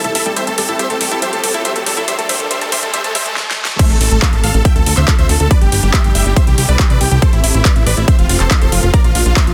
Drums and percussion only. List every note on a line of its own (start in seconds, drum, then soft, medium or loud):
0.04 closed hi-hat soft
0.15 open hi-hat loud
0.36 closed hi-hat medium
0.47 closed hi-hat soft
0.58 open hi-hat loud
0.69 closed hi-hat soft
0.79 closed hi-hat medium
0.90 closed hi-hat soft
1.01 open hi-hat loud
1.11 closed hi-hat soft
1.22 closed hi-hat medium
1.33 closed hi-hat soft
1.44 open hi-hat loud
1.54 closed hi-hat soft
1.65 closed hi-hat medium
1.76 closed hi-hat soft
1.86 open hi-hat loud
1.97 closed hi-hat soft
2.08 closed hi-hat medium
2.19 closed hi-hat soft
2.29 open hi-hat loud
2.40 closed hi-hat soft
2.51 closed hi-hat medium
2.61 closed hi-hat soft
2.72 open hi-hat loud
2.83 closed hi-hat soft
2.94 closed hi-hat medium
3.04 closed hi-hat soft
3.15 open hi-hat loud
3.26 closed hi-hat soft
3.36 snare medium
3.51 snare medium
3.65 snare loud
3.79 kick loud
3.79 closed hi-hat medium
3.79 crash loud
3.90 closed hi-hat soft
4.01 open hi-hat loud
4.11 closed hi-hat soft
4.22 kick loud
4.22 clap loud
4.22 closed hi-hat medium
4.33 closed hi-hat soft
4.44 open hi-hat medium
4.54 closed hi-hat soft
4.65 kick loud
4.65 closed hi-hat medium
4.76 closed hi-hat soft
4.86 open hi-hat loud
4.97 clap soft
5.08 kick loud
5.08 clap loud
5.08 closed hi-hat medium
5.19 closed hi-hat soft
5.29 open hi-hat medium
5.40 closed hi-hat soft
5.51 kick loud
5.51 closed hi-hat medium
5.61 closed hi-hat soft
5.72 open hi-hat loud
5.83 closed hi-hat soft
5.94 kick loud
5.94 clap loud
5.94 closed hi-hat medium
6.04 closed hi-hat soft
6.15 open hi-hat medium
6.26 closed hi-hat soft
6.36 kick loud
6.36 closed hi-hat medium
6.47 closed hi-hat soft
6.58 open hi-hat loud
6.69 closed hi-hat soft
6.79 kick loud
6.79 clap loud
6.79 closed hi-hat medium
6.90 closed hi-hat soft
7.01 open hi-hat loud
7.11 closed hi-hat soft
7.22 kick loud
7.22 closed hi-hat medium
7.33 closed hi-hat soft
7.44 open hi-hat loud
7.54 closed hi-hat soft
7.65 kick loud
7.65 clap loud
7.65 closed hi-hat medium
7.76 closed hi-hat soft
7.87 open hi-hat medium
7.97 closed hi-hat soft
8.08 kick loud
8.08 closed hi-hat medium
8.19 closed hi-hat soft
8.29 open hi-hat loud
8.40 clap soft
8.40 closed hi-hat soft
8.51 kick loud
8.51 clap loud
8.51 closed hi-hat medium
8.62 closed hi-hat soft
8.72 open hi-hat loud
8.83 closed hi-hat soft
8.94 kick loud
8.94 closed hi-hat medium
9.04 closed hi-hat soft
9.15 open hi-hat loud
9.26 closed hi-hat soft
9.36 kick loud
9.36 clap loud
9.36 closed hi-hat medium
9.47 closed hi-hat soft